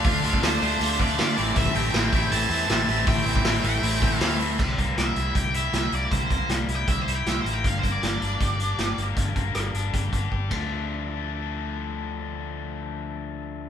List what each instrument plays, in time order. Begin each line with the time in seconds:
Already playing: analog synth pad F4 D5 A5 C6, lead electric guitar F5
0.05 fingered electric bass D2, overdriven electric guitar D3 F3 A3 D4 F4, kick, open hi-hat
0.23 fingered electric bass D2, overdriven electric guitar D3 F3 A3 D4 F4, open hi-hat
0.33 kick
0.42 fingered electric bass D2, overdriven electric guitar D3 F3 A3 D4 F4, lead electric guitar C5, snare, open hi-hat
0.61 fingered electric bass D2, overdriven electric guitar D3 F3 A3 D4 F4, open hi-hat
0.80 fingered electric bass D2, overdriven electric guitar D3 F3 A3 D4 F4, open hi-hat
1.00 overdriven electric guitar D3 F3 A3 D4 F4, lead electric guitar D5, kick, open hi-hat
1.18 fingered electric bass D3, overdriven electric guitar D3 F3 A3 D4 F4, snare, open hi-hat
1.37 fingered electric bass A1, overdriven electric guitar A2 E3 A3 C4 E4, analog synth pad G4 E5 A5, open hi-hat
1.56 fingered electric bass A1, overdriven electric guitar A2 E3 A3 C4 E4, lead electric guitar E5, kick, open hi-hat
1.66 kick
1.75 fingered electric bass A1, overdriven electric guitar A2 E3 A3 C4 E4, lead electric guitar G5, open hi-hat
1.93 fingered electric bass A1, overdriven electric guitar A2 E3 A3 C4 E4, snare, open hi-hat
2.12 fingered electric bass A1, overdriven electric guitar A2 E3 A3 C4 E4, kick, open hi-hat
2.31 fingered electric bass A1, overdriven electric guitar A2 E3 A3 C4 E4, lead electric guitar A5, open hi-hat
2.50 fingered electric bass E2, overdriven electric guitar A2 E3 A3 C4 E4, open hi-hat
2.69 fingered electric bass A1, overdriven electric guitar A2 E3 A3 C4 E4, snare, open hi-hat
2.87 fingered electric bass A1, overdriven electric guitar A2 E3 A3 C4 E4, open hi-hat
3.06 fingered electric bass A1, overdriven electric guitar A2 E3 A3 C4 E4, lead electric guitar G5, kick, open hi-hat
3.25 fingered electric bass A1, overdriven electric guitar A2 E3 A3 C4 E4, open hi-hat
3.35 kick
3.44 fingered electric bass A1, overdriven electric guitar A2 E3 A3 C4 E4, lead electric guitar G5, snare, open hi-hat
3.63 fingered electric bass A1, overdriven electric guitar A2 E3 A3 C4 E4, lead electric guitar G5, open hi-hat
3.82 fingered electric bass A1, overdriven electric guitar A2 E3 A3 C4 E4, open hi-hat
4.01 overdriven electric guitar A2 E3 A3 C4 E4, kick, open hi-hat
4.18 fingered electric bass D2, overdriven electric guitar A2 E3, lead electric guitar F5, snare, open hi-hat
4.22 overdriven electric guitar A3 C4 E4
4.39 overdriven electric guitar A2 E3 A3 C4 E4, open hi-hat
4.59 fingered electric bass C2, overdriven electric guitar C3, kick, crash
4.78 fingered electric bass C2, overdriven electric guitar A#3, kick, closed hi-hat
4.96 fingered electric bass C2, overdriven electric guitar G3, lead electric guitar E5, snare, closed hi-hat
5.15 fingered electric bass C2, overdriven electric guitar E4, closed hi-hat
5.35 fingered electric bass C2, overdriven electric guitar G4, lead electric guitar G5, kick, closed hi-hat
5.54 overdriven electric guitar E4, lead electric guitar E5, closed hi-hat
5.73 fingered electric bass C2, overdriven electric guitar G4, snare, closed hi-hat
5.92 fingered electric bass C2, overdriven electric guitar A#3, lead electric guitar D5, closed hi-hat
6.11 fingered electric bass C2, overdriven electric guitar C3, lead electric guitar C5, kick, closed hi-hat
6.30 fingered electric bass C2, overdriven electric guitar A#3, kick, closed hi-hat
6.48 fingered electric bass C2, overdriven electric guitar G3, snare, closed hi-hat
6.68 fingered electric bass C2, overdriven electric guitar E4, closed hi-hat
6.76 lead electric guitar G5
6.88 fingered electric bass C2, overdriven electric guitar G4, lead electric guitar E5, kick, closed hi-hat
7.02 fingered electric bass C2, lead electric guitar C5
7.08 overdriven electric guitar E4, closed hi-hat
7.15 lead electric guitar G5
7.26 fingered electric bass C2, overdriven electric guitar G4, lead electric guitar E5, snare, closed hi-hat
7.41 fingered electric bass A1, lead electric guitar C5
7.45 overdriven electric guitar A#3, closed hi-hat
7.53 lead electric guitar G5
7.64 fingered electric bass G1, overdriven electric guitar G2, lead electric guitar F5, kick, closed hi-hat
7.79 lead electric guitar C5
7.83 fingered electric bass G1, overdriven electric guitar A#3, kick, closed hi-hat
7.92 lead electric guitar D5
8.02 fingered electric bass G1, overdriven electric guitar G3, snare, closed hi-hat
8.21 fingered electric bass G1, overdriven electric guitar D4, closed hi-hat
8.40 fingered electric bass G1, overdriven electric guitar G4, kick, closed hi-hat
8.59 overdriven electric guitar D4, closed hi-hat
8.78 fingered electric bass G1, overdriven electric guitar G4, snare, closed hi-hat
8.97 fingered electric bass G1, overdriven electric guitar A#3, closed hi-hat
9.17 fingered electric bass G1, overdriven electric guitar G2, kick, closed hi-hat
9.36 fingered electric bass G1, overdriven electric guitar A#3, kick, closed hi-hat
9.54 fingered electric bass G1, overdriven electric guitar G3, cross-stick, closed hi-hat
9.74 fingered electric bass G1, overdriven electric guitar D4, closed hi-hat
9.94 fingered electric bass G1, overdriven electric guitar G4, kick, closed hi-hat
10.12 fingered electric bass G1, overdriven electric guitar D4, kick, closed hi-hat
10.31 fingered electric bass G1, overdriven electric guitar G4, kick
10.49 fingered electric bass D2, overdriven electric guitar D3 F3 A3 D4, kick, ride